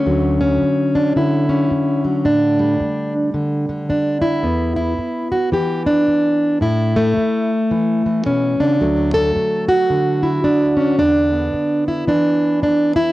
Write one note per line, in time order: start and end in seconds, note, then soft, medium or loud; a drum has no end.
0.00 1.15 D3 medium
0.00 0.40 A3 soft
0.00 0.39 C#4 medium
0.06 0.61 D2 medium
0.06 2.03 F#3 soft
0.41 1.48 C#4 medium
0.62 muted steel-string acoustic guitar stroke medium
0.95 1.16 D4 medium
1.16 3.33 D3 medium
1.16 2.04 E4 medium
1.49 2.25 C#4 medium
1.70 muted steel-string acoustic guitar stroke medium
2.04 2.25 F#3 soft
2.25 2.79 A2 medium
2.25 3.13 D4 loud
2.59 4.43 G3 medium
2.80 muted steel-string acoustic guitar stroke medium
3.34 3.68 D3 medium
3.69 4.44 D3 soft
3.89 4.21 D4 medium
3.89 muted steel-string acoustic guitar stroke medium
4.22 4.75 E4 loud
4.43 4.97 E2 medium
4.43 6.60 B3 soft
4.76 5.31 E4 loud
4.98 muted steel-string acoustic guitar stroke medium
5.32 5.53 F#4 medium
5.52 6.59 E3 medium
5.52 5.86 G4 loud
5.86 6.62 D4 medium
6.07 muted steel-string acoustic guitar stroke medium
6.61 7.16 A2 medium
6.61 7.50 E4 loud
6.96 8.26 A3 loud
7.16 muted steel-string acoustic guitar stroke medium
7.71 8.05 E3 medium
8.06 8.79 E3 soft
8.26 8.60 B2 medium
8.26 8.81 C#4 medium
8.60 8.81 C#3 medium
8.60 9.14 D4 loud
8.81 9.34 D2 medium
8.81 10.99 F#3 soft
8.81 10.22 A3 soft
9.14 9.68 A4 loud
9.35 muted steel-string acoustic guitar stroke medium
9.68 10.44 F#4 loud
9.90 12.07 D3 medium
10.23 10.76 E4 medium
10.44 10.97 D4 medium
10.44 muted steel-string acoustic guitar stroke medium
10.77 10.98 C#4 medium
10.98 11.52 E2 medium
10.98 11.87 D4 loud
11.33 13.12 B3 soft
11.53 muted steel-string acoustic guitar stroke medium
11.88 12.08 E4 medium
12.07 13.12 E3 medium
12.07 12.62 D4 loud
12.62 12.96 D4 medium
12.62 muted steel-string acoustic guitar stroke medium
12.96 13.12 E4 loud